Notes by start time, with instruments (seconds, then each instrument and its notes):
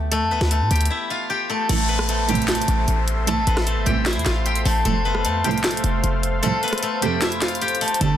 Already playing: 808-style bass D2, guzheng A3 B3 F4 G4 A4 B4 G5
0.11 guzheng A3 A4, closed hi-hat
0.21 808-style bass F2
0.31 808-style bass D2, guzheng B3 B4
0.41 808-style bass D2, snare
0.51 guzheng A3 A4, closed hi-hat
0.61 808-style bass A2
0.71 808-style bass D2, guzheng G4 G5, closed hi-hat
0.76 closed hi-hat
0.81 closed hi-hat
0.85 closed hi-hat
0.90 guzheng E4 E5
1.10 guzheng F4 F5
1.30 guzheng G4 G5
1.50 guzheng A3 A4
1.69 808-style bass A1, string section C2 A2 E3, guzheng A3 A4, analog synth pad A4 C5 E5 C6, closed hi-hat, crash, downlifter
1.89 guzheng B3 B4
1.99 cross-stick
2.09 guzheng A3 A4, closed hi-hat
2.29 string section C2 A2 E3, guzheng G4 G5, closed hi-hat
2.35 closed hi-hat
2.42 closed hi-hat
2.48 guzheng A3 A4, snare, clap, closed hi-hat
2.55 closed hi-hat
2.62 closed hi-hat
2.68 808-style bass A1, closed hi-hat
2.88 808-style bass A1, closed hi-hat
3.08 closed hi-hat
3.27 808-style bass B1, string section C2 A2 E3, guzheng A3 A4, closed hi-hat
3.37 808-style bass A1
3.47 808-style bass A1, guzheng B3 B4, closed hi-hat
3.57 cross-stick, snare
3.67 guzheng A3 A4, closed hi-hat
3.77 808-style bass G1
3.86 808-style bass A1, string section C2 A2 E3, guzheng G4 G5, closed hi-hat
4.06 guzheng E4 E5, snare, clap, closed hi-hat
4.13 808-style bass E2, closed hi-hat
4.19 closed hi-hat
4.26 808-style bass A1, guzheng F4 F5, snare, clap, closed hi-hat
4.46 guzheng G4 G5, closed hi-hat
4.56 closed hi-hat
4.65 808-style bass A1, guzheng A3 A4, open hi-hat
4.85 808-style bass F1, string section C2 A2 F3, guzheng A3 A4, analog synth pad A4 F5, closed hi-hat
5.05 guzheng B3 B4
5.15 cross-stick
5.25 808-style bass F2, guzheng A3 A4, closed hi-hat
5.44 string section C2 A2 F3, guzheng G4 G5, closed hi-hat
5.51 closed hi-hat
5.58 closed hi-hat
5.64 guzheng A3 A4, snare, clap, closed hi-hat
5.71 closed hi-hat
5.77 closed hi-hat
5.84 808-style bass F1, closed hi-hat
6.04 808-style bass F1, closed hi-hat
6.23 closed hi-hat
6.43 string section C2 A2 F3, guzheng A3 A4, closed hi-hat
6.63 guzheng B3 B4, closed hi-hat
6.68 closed hi-hat
6.73 cross-stick, closed hi-hat
6.78 closed hi-hat
6.83 guzheng A3 A4, closed hi-hat
7.02 string section F2 C3 A3, guzheng G4 G5, closed hi-hat
7.22 guzheng E4 E5, snare, clap, closed hi-hat
7.32 closed hi-hat
7.41 guzheng F4 F5, snare, clap, closed hi-hat
7.48 closed hi-hat
7.55 closed hi-hat
7.61 guzheng G4 G5, closed hi-hat
7.68 closed hi-hat
7.75 closed hi-hat
7.81 guzheng A3 A4, closed hi-hat, open hi-hat
7.88 closed hi-hat
7.94 closed hi-hat
8.01 808-style bass G1, string section D2 C3 G3, synth keys D3, guzheng A3 A4, analog synth pad D5 G5 D6, closed hi-hat